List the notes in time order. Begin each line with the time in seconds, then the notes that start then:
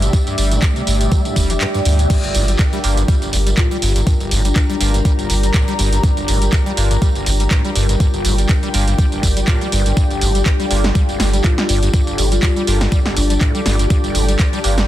Already playing: G3 A3 D4 G4 D5 E5
0.02 C3, closed hi-hat, tambourine
0.13 G2, kick, closed hi-hat, tambourine
0.27 G2, closed hi-hat, tambourine
0.38 G1 G3, open hi-hat, tambourine
0.51 G2, closed hi-hat, tambourine
0.62 F2, kick, clap, closed hi-hat, tambourine
0.76 C3, closed hi-hat, tambourine
0.87 G1 G2, open hi-hat, tambourine
1.01 C3, closed hi-hat, tambourine
1.12 G3, kick, closed hi-hat, tambourine
1.25 G2, closed hi-hat, tambourine
1.36 F1 G3, kick, open hi-hat, tambourine
1.50 D3, closed hi-hat, tambourine
1.61 G2, clap, closed hi-hat, tambourine
1.74 G2, closed hi-hat, tambourine
1.85 D2 G2, open hi-hat, tambourine
1.99 C3, closed hi-hat, tambourine
2.10 G2 G3 D4 F4 G4 A#4, kick, closed hi-hat, crash, tambourine
2.24 G1, closed hi-hat, tambourine
2.35 G1 A#2, open hi-hat, tambourine
2.48 G3, closed hi-hat, tambourine
2.55 G2 D5, kick, clap, closed hi-hat
2.60 tambourine
2.73 G3, closed hi-hat, tambourine
2.84 G1 G2 A#3 D4 F4 G4, open hi-hat, tambourine
2.93 A#5
2.97 G2, closed hi-hat, tambourine
3.08 G3, kick, closed hi-hat, tambourine
3.22 G1, closed hi-hat, tambourine
3.33 G1 G2, open hi-hat, tambourine
3.47 G3, closed hi-hat, tambourine
3.58 A2 F4, kick, clap, closed hi-hat, tambourine
3.71 G3, closed hi-hat, tambourine
3.82 G1 G2, open hi-hat, tambourine
3.96 G2, closed hi-hat, tambourine
4.07 G2, kick, closed hi-hat, tambourine
4.20 G1, closed hi-hat, tambourine
4.31 G1 A#2, open hi-hat, tambourine
4.45 G3 D4, closed hi-hat, tambourine
4.56 G2 D4, kick, clap, closed hi-hat, tambourine
4.70 G3, closed hi-hat, tambourine
4.80 G1 G2 A#3 D4 F4 G4, open hi-hat, tambourine
4.94 G2, closed hi-hat, tambourine
5.05 G3, kick, closed hi-hat, tambourine
5.19 G1, closed hi-hat, tambourine
5.30 G1 G2, open hi-hat, tambourine
5.43 G3, closed hi-hat, tambourine
5.54 A2, kick, clap, closed hi-hat, tambourine
5.68 G3, closed hi-hat, tambourine
5.79 G1 G2, open hi-hat, tambourine
5.92 G2, closed hi-hat, tambourine
6.03 G2, kick, closed hi-hat, tambourine
6.17 G1, closed hi-hat, tambourine
6.28 G1 A#2, open hi-hat, tambourine
6.42 G3, closed hi-hat, tambourine
6.53 G2, kick, clap, closed hi-hat, tambourine
6.66 G3, closed hi-hat, tambourine
6.77 G1 G2 A#3 D4 F4 G4, open hi-hat, tambourine
6.86 G5
6.91 G2, closed hi-hat, tambourine
7.02 G3, kick, closed hi-hat, tambourine
7.15 G1, closed hi-hat, tambourine
7.26 G1 G2, open hi-hat, tambourine
7.40 G3, closed hi-hat, tambourine
7.51 A2, kick, clap, closed hi-hat, tambourine
7.65 G3, closed hi-hat, tambourine
7.76 G1 G2, open hi-hat, tambourine
7.89 G2, closed hi-hat, tambourine
8.00 G2, kick, closed hi-hat, tambourine
8.14 G1, closed hi-hat, tambourine
8.25 G1 A#2, open hi-hat, tambourine
8.38 G3, closed hi-hat, tambourine
8.49 G2, kick, clap, closed hi-hat, tambourine
8.63 G3, closed hi-hat, tambourine
8.74 G1 G2 A#3 D4 F4 G4, open hi-hat, tambourine
8.88 G2, closed hi-hat, tambourine
8.98 G3, kick, closed hi-hat, tambourine
9.12 G1, closed hi-hat, tambourine
9.23 G1 G2, kick, open hi-hat, tambourine
9.37 G3, closed hi-hat, tambourine
9.48 A2 A#3 D4 F4 G4, kick, clap, closed hi-hat, tambourine
9.61 G3, closed hi-hat, tambourine
9.72 G1 G2, open hi-hat, tambourine
9.86 G2, closed hi-hat, tambourine
9.97 G2 A4, kick, closed hi-hat, tambourine
10.11 G1, closed hi-hat, tambourine
10.21 G1 A#2, open hi-hat, tambourine
10.35 G3, closed hi-hat, tambourine
10.46 G2, kick, clap, closed hi-hat, tambourine
10.60 G3, closed hi-hat, tambourine
10.71 G1 G2 A#3 D4 F4 G4, open hi-hat, tambourine
10.84 G2, snare, closed hi-hat, tambourine
10.95 G3, kick, closed hi-hat, tambourine
11.09 G1, closed hi-hat, tambourine
11.20 G1 G2, snare, open hi-hat, tambourine
11.33 G3, closed hi-hat, tambourine
11.44 A2 F4, kick, clap, closed hi-hat, tambourine
11.58 G3, snare, closed hi-hat, tambourine
11.69 G1 G2, open hi-hat, tambourine
11.83 G2, closed hi-hat, tambourine
11.94 G2, kick, closed hi-hat, tambourine
12.07 G1, closed hi-hat, tambourine
12.18 G1 A#2, open hi-hat, tambourine
12.32 G3 F4, closed hi-hat, tambourine
12.43 G2, kick, clap, closed hi-hat, tambourine
12.56 G3, closed hi-hat, tambourine
12.67 G1 G2 A#3 D4 F4 G4, open hi-hat, tambourine
12.81 G2, snare, closed hi-hat, tambourine
12.92 G3, kick, closed hi-hat, tambourine
13.06 G1, snare, closed hi-hat, tambourine
13.16 G1 G2 D4, open hi-hat, tambourine
13.30 G3, closed hi-hat, tambourine
13.41 A2, kick, clap, closed hi-hat, tambourine
13.55 G3, closed hi-hat, tambourine
13.66 G1 G2, snare, open hi-hat, tambourine
13.79 G2, closed hi-hat, tambourine
13.90 G2, kick, closed hi-hat, tambourine
14.04 G1, closed hi-hat, tambourine
14.15 G1 A#2, open hi-hat, tambourine
14.28 G3, closed hi-hat, tambourine
14.39 G2, kick, clap, closed hi-hat, tambourine
14.53 G3, closed hi-hat, tambourine
14.64 G1 G2 A#3 D4 F4 G4, open hi-hat, tambourine
14.78 G2, snare, closed hi-hat, tambourine